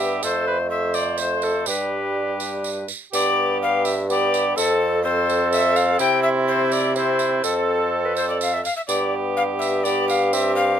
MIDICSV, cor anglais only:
0, 0, Header, 1, 2, 480
1, 0, Start_track
1, 0, Tempo, 480384
1, 232, Time_signature, 3, 2, 24, 8
1, 10788, End_track
2, 0, Start_track
2, 0, Title_t, "Cor anglais"
2, 0, Program_c, 0, 69
2, 0, Note_on_c, 0, 67, 62
2, 236, Note_on_c, 0, 69, 70
2, 251, Note_off_c, 0, 67, 0
2, 464, Note_off_c, 0, 69, 0
2, 470, Note_on_c, 0, 71, 68
2, 577, Note_off_c, 0, 71, 0
2, 708, Note_on_c, 0, 72, 63
2, 1671, Note_on_c, 0, 67, 52
2, 1686, Note_off_c, 0, 72, 0
2, 2883, Note_off_c, 0, 67, 0
2, 3117, Note_on_c, 0, 67, 64
2, 4040, Note_off_c, 0, 67, 0
2, 4097, Note_on_c, 0, 67, 72
2, 4564, Note_on_c, 0, 69, 71
2, 4579, Note_off_c, 0, 67, 0
2, 5034, Note_off_c, 0, 69, 0
2, 5040, Note_on_c, 0, 69, 81
2, 5988, Note_on_c, 0, 64, 74
2, 6003, Note_off_c, 0, 69, 0
2, 6945, Note_off_c, 0, 64, 0
2, 6953, Note_on_c, 0, 64, 67
2, 7422, Note_off_c, 0, 64, 0
2, 7433, Note_on_c, 0, 69, 68
2, 8615, Note_off_c, 0, 69, 0
2, 8882, Note_on_c, 0, 67, 68
2, 9799, Note_off_c, 0, 67, 0
2, 9841, Note_on_c, 0, 67, 72
2, 10307, Note_off_c, 0, 67, 0
2, 10321, Note_on_c, 0, 67, 68
2, 10785, Note_off_c, 0, 67, 0
2, 10788, End_track
0, 0, End_of_file